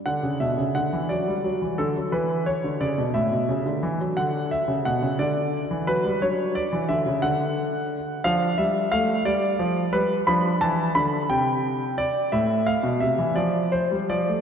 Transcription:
grand piano
0.06 D3 D4 F#5
0.23 C#3
0.40 B2 E5
0.58 C#3
0.75 D3 F#5
0.93 E3
1.09 F#3 D5
1.27 G3
1.44 F#3
1.62 E3
1.78 D3 A4
1.96 F#3
2.12 E3 B4
2.46 C#5
2.64 D3
2.81 C#3 D5
2.98 B2
3.14 A2 E5
3.32 B2
3.49 C#3
3.66 D3
3.83 E3
4.00 F#3
4.17 D3 D4 F#5
4.51 E5
4.68 C#3
4.85 B2 F#5
5.02 C#3
5.19 D3 D5
5.71 E3
5.87 F#3 B4
6.05 G3
6.22 F#3 D4 C#5
6.55 D5
6.73 E3
6.89 D3 E5
7.06 C#3
7.22 D3 F#5
8.24 F3 D4 F5
8.58 G3 E5
8.92 A3 F5
9.25 G3 D5
9.59 F3
9.93 G3 B4
10.27 F3 D4 B5
10.61 E3 A5
10.95 D3 B5
11.30 C3 G5
11.98 D5
12.32 A2 E4 E5
12.67 F5
12.83 B2
13.00 C3 E5
13.18 E3
13.36 F3 D5
13.72 C5
13.91 G3
14.10 F3 D5
14.28 A3

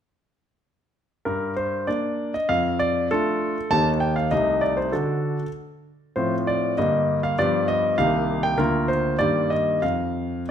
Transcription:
grand piano
1.25 G2 A#4
1.56 C5
1.87 A#3 D4 D5
2.34 D#5
2.49 F2 F5
2.79 D5
3.11 A3 D4 F4 A4
3.71 D#2 A#3 D#4 G4 A5
4.00 G5
4.16 F5
4.31 C2 A3 D#4 G4 D#5
4.61 D5
4.77 C5
4.92 D3 D4 F#4 A4
6.16 A2 F3 C4 F4 C5
6.47 D5
6.78 G2 D3 A#3 G4 D#5
7.23 F5
7.39 G2 F3 B3 G4 D5
7.68 D#5
7.98 C2 D#3 A#3 G4 F5
8.43 G5
8.58 D2 D3 A#3 F4 A#4
8.88 C5
9.19 G2 D#3 A#3 G4 D5
9.50 D#5
9.82 F2 F5

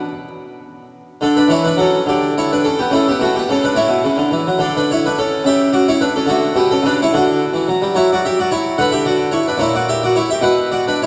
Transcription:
harpsichord
Already playing: B4
1.21 D3 D4 A4
1.36 D4 B4
1.48 E3 E4 C#5
1.64 D4 B4
1.77 F#3 C#4 A4
2.06 D3 G4 D5
2.38 E4 C#5
2.52 D4 B4
2.64 C#4 A4
2.79 B3 G4
2.91 C#3 A3 E4
3.08 B3 G4
3.20 B2 A3 F#4
3.36 B3 G4
3.49 C#3 C#4 A4
3.64 D4 B4
3.75 A2 E4 C#5
3.88 B2
4.04 C#3
4.17 D3
4.31 E3
4.47 F#3
4.58 D3 D4 A4
4.77 D4 B4
4.91 E4 C#5
5.06 D4 B4
5.18 C#4 A4
5.44 C#3 G4 E5
5.73 F#4 D5
5.88 E4 C#5
6.01 D4 B4
6.16 C#4 A4
6.26 D3 F#4
6.30 A3
6.54 B2 B3 G4
6.71 C#4 A4
6.83 C#3 D4 B4
7.02 E4 C#5
7.13 D3 F#4 D5
7.53 E3
7.68 F#3
7.82 G3
7.95 F#3 E4 C#5
8.12 F#4 D5
8.25 G4 E5
8.39 F#4 D5
8.51 E4 C#5
8.78 D3 B4 F#5
8.91 G4 E5
9.05 F#4 D5
9.31 E4 C#5
9.47 D4 B4
9.57 A#2 E4 C#5
9.75 F#4 D5
9.89 G4 E5
10.03 F#4 D5
10.16 E4 C#5
10.30 G4 E5
10.41 B2 B4 F#5
10.72 F#4 D5
10.88 D4 B4
11.02 C#5

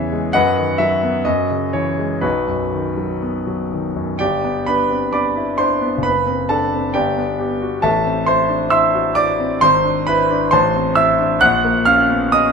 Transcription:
grand piano
Already playing: E2 C#3 E3 G#4 C#5 E5
0.12 G#3
0.33 F#2 B4 D#5 F#5
0.58 D#3
0.78 F#3 E5
1.03 B3
1.25 F#2 D#5
1.51 C#3
1.73 E3 C#5
1.98 G#3
2.21 B1 D#4 F#4 B4
2.47 F#2
2.73 D#3
2.97 F#3
3.22 B3
3.47 F#3
3.72 D#3
3.96 F#2
4.19 G1 G4 D5 G5
4.44 B3
4.67 D4 B4 B5
4.90 C4
5.13 D4 D5 B5 D6
5.36 E4
5.58 D4 C5 C6
5.82 B3
5.98 F#1
6.03 B4 B5
6.27 C4
6.49 D4 A4 A5
6.73 C4
6.94 G1 G4 D5 G5
7.17 B3
7.39 G4
7.62 F#4
7.82 A1 A4 E5 A5
8.05 C4
8.26 E4 C5 C6
8.49 D4
8.70 E4 E5 C6 E6
8.94 F#4
9.15 E4 D5 D6
9.40 C4
9.61 G#1 C5 C6
9.84 D4
10.07 E4 B4 B5
10.31 D4
10.51 A1 C5 A5 C6
10.76 C4
10.95 E4 E5 E6
11.19 D4
11.41 A#1 F#5 F#6
11.65 A#3
11.85 C#4 F5 F6
12.10 B3
12.32 C#4 D#5 D#6

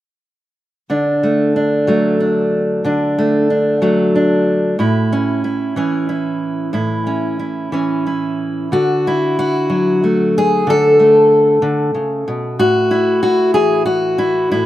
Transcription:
steel-string acoustic guitar
0.90 D3 D4
1.23 A3
1.56 D4
1.87 F#3 A3
2.20 D4
2.84 D3 D4
3.18 A3
3.50 D4
3.82 F#3 A3
4.15 D4
4.79 A2 E4
5.12 C#4
5.44 E4
5.76 E3 C#4
6.09 E4
6.73 A2 E4
7.07 C#4
7.39 E4
7.72 E3 C#4
8.07 E4
8.72 D3 F#4
9.07 E4
9.39 F#4
9.70 F#3
10.04 A3
10.38 G#4
10.67 D3 A4
10.99 A3
11.62 D3
11.95 C#3
12.28 B2
12.59 A2 F#4
12.91 E4
13.23 F#4
13.54 E3 G#4
13.86 F#4
14.18 E4
14.51 A2 E4

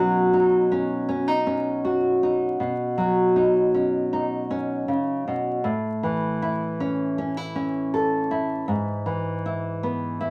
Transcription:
nylon-string guitar
Already playing: B2 F#3 C#4 D#4 F#4
0.33 D#4
0.71 C#4
1.09 C#4
1.28 D#4
1.47 C#4
1.85 F#4
2.23 D#4
2.60 B2
2.98 F#3
3.36 D#4
3.74 C#4
4.13 D#4
4.50 C#4
4.88 C#3
5.28 B2
5.64 A2
6.03 E3
6.42 E4
6.80 C#4
7.18 C#4
7.37 E4
7.56 C#4
7.94 A4
8.31 E4
8.68 G#2
9.06 E3
9.46 E4
9.83 B3
10.21 E4

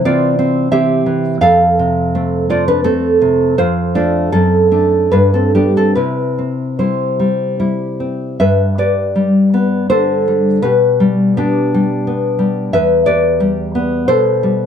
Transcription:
nylon-string guitar
Already playing: C3
0.05 E3 C4 F4 D5
0.39 C4
0.71 E3 C4 G4 E5
1.06 E3
1.41 F2 A4 F5
1.79 C3
2.15 A3 C4
2.50 A3 F4 D5
2.68 D4 B4
2.84 A3 C4 A4
3.22 C3
3.58 F2 F4 C5
3.95 A3 D4 F4 D5
4.32 F#2 C4 A4
4.72 A3 D4
5.12 G2 D4 B4
5.34 C4 A4
5.55 G3 B3 D4 G4
5.77 C4 A4
5.95 C3 E4 B4
6.39 C4
6.79 G3 E4 C5
7.19 G3
7.60 G3 E4
8.00 C4
8.40 G2 B4 E5
8.78 G4 B4 D5
9.16 G3
9.54 B3
9.90 D3 A4 C5
10.28 G3
10.62 B2 G4 B4
11.00 G3
11.37 B3 D4 G4
11.74 G3
12.07 B3
12.39 G3
12.73 E2 B4 E5
13.06 G4 B4 D5
13.40 G3
13.75 B3
14.08 B2 A4 C5
14.43 G3

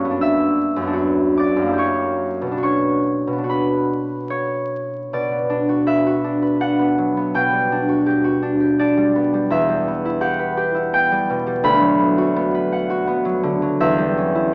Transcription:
harp
Already playing: F#2 A#3 C#4 F#4 C#5 F#5 A#5 C#6 F#6 A#6
0.00 G2
0.05 B3
0.10 D4
0.21 E5 E6
0.76 F#2
0.82 B3
0.87 D4
0.93 F#4
1.38 D5 D6
1.56 F#2
1.61 A#3
1.67 E4
1.73 G4
1.78 C#5 C#6
2.42 B2
2.47 B3
2.52 D4
2.57 F#4
2.63 C#5 C#6
3.27 B2
3.32 B3
3.38 D4
3.44 F#4
3.49 B4 B5
4.30 C#5
5.13 B2 D5
5.32 B3
5.50 D4
5.69 F#4
5.87 B4 E5
6.07 F#4
6.24 D4
6.42 B4
6.61 D4 F#5
6.79 B3
6.98 F#3
7.17 B3
7.34 B2 G5
7.53 G3
7.72 D4
7.89 F#4
8.06 G4
8.24 F#4
8.42 D4
8.60 G4
8.79 D4 D5
8.97 G3
9.16 B3
9.34 G3
9.50 E2 E5
9.69 G3
9.88 B3
10.05 E4
10.21 G4 F#5
10.39 B4
10.57 G4
10.75 E4
10.93 B3 G5
11.12 G3
11.30 B2
11.47 G3
11.64 D2 B5
11.80 F#3
11.99 B3
12.18 F#4
12.36 B3
12.55 B4
12.72 F#5
12.90 F#4
13.07 B3
13.25 F#3
13.43 D3
13.62 F#3
13.80 E2 E5
13.98 G3
14.17 C#4
14.35 E4

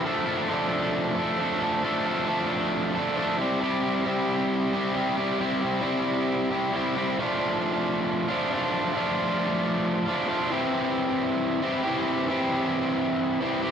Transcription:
distorted electric guitar
0.04 F3 A3 D4 A4
0.26 A3 D4 A4
0.48 F3 A3 D4 A4
1.16 A3 D4 A4
1.38 F3 A3 D4 A4
1.60 A3 D4 A4
1.83 F3 A3 D4 A4
2.05 A3 D4 A4
2.26 F3 A3 D4 A4
2.95 A3 D4 A4
3.16 F3 A3 D4 A4
3.38 G3 C4 E4 G4
3.60 G3 C4 E4 G4
3.82 C4 E4 G4
4.04 G3 C4 E4 G4
4.73 C4 E4 G4
4.93 G3 C4 E4 G4
5.17 C4 E4 G4
5.39 G3 C4 E4 G4
5.61 C4 E4 G4
5.81 G3 C4 E4 G4
6.50 C4 E4 G4
6.73 G3 C4 E4 G4
6.95 C4 E4 G4
7.18 F3 A3 D4 F4
8.28 F3 A3 D4 F4
8.51 F3 A3 D4 F4
8.94 F3 A3 D4 F4
10.06 F3 A3 D4 F4
10.26 F3 A3 D4 F4
10.50 E3 C4 E4 G4
11.62 E3 C4 E4 G4
11.83 E3 C4 E4 G4
12.28 E3 C4 E4 G4
13.40 E3 C4 E4 G4
13.62 E3 C4 E4 G4

